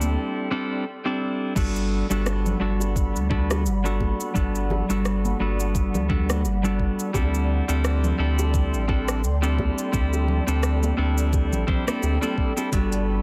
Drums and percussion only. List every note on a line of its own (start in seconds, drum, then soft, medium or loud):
0.02 high conga medium
0.02 cabasa medium
1.56 kick loud
1.56 crash medium
1.56 high bongo soft
1.56 cabasa medium
1.76 cabasa soft
2.11 cabasa medium
2.26 cross-stick medium
2.26 high bongo medium
2.26 cabasa medium
2.46 low conga medium
2.46 cabasa soft
2.80 high bongo medium
2.80 cabasa medium
2.96 kick loud
2.96 cabasa medium
3.16 cabasa soft
3.31 kick loud
3.51 cross-stick medium
3.51 high bongo medium
3.51 cabasa medium
3.66 cabasa medium
3.86 cabasa soft
4.00 kick medium
4.00 high bongo medium
4.00 high conga medium
4.20 cabasa medium
4.35 kick loud
4.35 cabasa medium
4.55 cabasa soft
4.70 high bongo medium
4.70 low conga medium
4.90 cabasa medium
5.05 cross-stick medium
5.05 cabasa medium
5.25 high bongo medium
5.25 high conga medium
5.25 cabasa soft
5.60 cabasa medium
5.75 kick loud
5.75 cabasa medium
5.94 high bongo medium
5.94 low conga loud
5.94 cabasa soft
6.10 kick loud
6.10 low conga medium
6.30 cross-stick medium
6.30 high conga medium
6.30 cabasa medium
6.45 high bongo soft
6.45 cabasa medium
6.65 cabasa soft
6.80 kick medium
7.00 cabasa medium
7.14 kick loud
7.14 high bongo medium
7.14 cabasa medium
7.34 cabasa soft
7.69 high bongo soft
7.69 cabasa medium
7.85 cross-stick medium
7.85 cabasa medium
8.04 low conga medium
8.04 cabasa soft
8.39 high bongo medium
8.39 cabasa medium
8.54 kick loud
8.54 cabasa medium
8.74 cabasa soft
8.89 kick loud
8.89 high bongo soft
9.08 cross-stick medium
9.08 cabasa medium
9.24 cabasa medium
9.43 cabasa soft
9.59 kick medium
9.59 high bongo medium
9.59 high conga medium
9.78 cabasa medium
9.94 kick loud
9.94 cabasa medium
10.13 high bongo soft
10.13 cabasa soft
10.28 low conga medium
10.48 cabasa medium
10.63 cross-stick medium
10.63 cabasa medium
10.83 high bongo medium
10.83 high conga medium
10.83 cabasa soft
11.18 cabasa medium
11.33 kick loud
11.33 high bongo soft
11.33 cabasa medium
11.52 low conga medium
11.52 cabasa soft
11.68 kick loud
11.68 low conga medium
11.88 cross-stick medium
11.88 high conga medium
11.88 cabasa medium
12.03 high bongo medium
12.03 cabasa medium
12.23 high conga medium
12.23 cabasa soft
12.38 kick medium
12.57 high bongo soft
12.57 cabasa medium
12.72 kick loud
12.72 closed hi-hat medium
12.72 high bongo soft
12.72 cabasa medium
12.92 closed hi-hat soft
12.92 cabasa soft